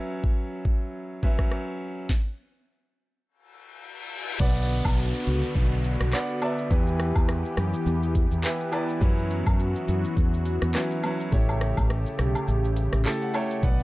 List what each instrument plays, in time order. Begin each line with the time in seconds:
Already playing: grand piano F#3 C#4 B4 E5
0.24 kick
0.65 kick
1.23 grand piano F#3 C#4 B4 E5, kick
1.39 kick, cross-stick
1.51 cross-stick
2.09 kick, snare
3.25 reverse cymbal
4.40 fretless electric bass B1, analog synth pad D3 B3 F#4, grand piano B3 B4 D5 F#5, kick, crash, downlifter, shaker
4.56 shaker
4.69 closed hi-hat, cabasa, shaker
4.85 fretless electric bass B1, kick, high woodblock, shaker
4.98 shaker
5.14 shaker
5.26 fretless electric bass C#2, closed hi-hat, cabasa, shaker
5.43 shaker
5.55 fretless electric bass B1, kick, shaker
5.72 shaker
5.84 closed hi-hat, cabasa, shaker
6.01 fretless electric bass B1, cross-stick, shaker
6.13 grand piano B3 B4 D5 F#5, cross-stick, clap, shaker
6.29 shaker
6.41 grand piano B3 B4 D5 E5, closed hi-hat, cabasa, high woodblock, shaker
6.58 shaker
6.70 fretless electric bass E2, grand piano E3 E4 G4 B4, analog synth pad E3 B3 G4, kick, shaker
6.87 shaker
7.00 cross-stick, closed hi-hat, cabasa, shaker
7.15 fretless electric bass E2, kick, high woodblock, shaker
7.28 cross-stick, shaker
7.45 shaker
7.57 fretless electric bass F#2, cross-stick, closed hi-hat, cabasa, shaker
7.74 shaker
7.86 fretless electric bass E2, shaker
8.03 shaker
8.15 kick, closed hi-hat, cabasa, shaker
8.31 fretless electric bass E2, shaker
8.43 grand piano E3 E4 G4 B4 E5, clap, shaker
8.60 shaker
8.72 grand piano E3 E4 G4 B4 D5, closed hi-hat, cabasa, high woodblock, shaker
8.89 shaker
9.01 fretless electric bass F#2, analog synth pad E3 F#4, grand piano F#3 C#4 E4 B4, kick, shaker
9.18 shaker
9.31 closed hi-hat, cabasa, shaker
9.46 fretless electric bass F#2, kick, high woodblock, shaker
9.59 shaker
9.75 shaker
9.88 fretless electric bass F#2, closed hi-hat, cabasa, shaker
10.04 shaker
10.17 fretless electric bass E2, kick, shaker
10.33 shaker
10.46 closed hi-hat, cabasa, shaker
10.62 fretless electric bass E2, cross-stick, shaker
10.74 grand piano F#3 C#4 E4 B4, cross-stick, clap, shaker
10.91 shaker
11.03 grand piano F#3 C#4 E4 B4, closed hi-hat, cabasa, high woodblock, shaker
11.20 shaker
11.32 fretless electric bass A1, analog synth pad C#3 A3 G4, grand piano A3 E4 G4 C#5, kick, shaker
11.49 high woodblock, shaker
11.61 cross-stick, closed hi-hat, cabasa, shaker
11.77 fretless electric bass A1, kick, high woodblock, shaker
11.90 cross-stick, shaker
12.06 shaker
12.19 fretless electric bass B1, cross-stick, closed hi-hat, cabasa, shaker
12.35 high woodblock, shaker
12.48 fretless electric bass A1, shaker
12.64 shaker
12.76 closed hi-hat, cabasa, shaker
12.93 fretless electric bass A1, cross-stick, shaker
13.05 grand piano A3 E4 G4 A4 E5, clap, shaker
13.21 grand piano F#5, shaker
13.34 grand piano A3 E4 G4 C#5 G5, closed hi-hat, cabasa, high woodblock, shaker
13.50 shaker
13.62 fretless electric bass B1, analog synth pad D3 B3 F#4, grand piano B3 B4 D5 F#5, kick, shaker
13.79 shaker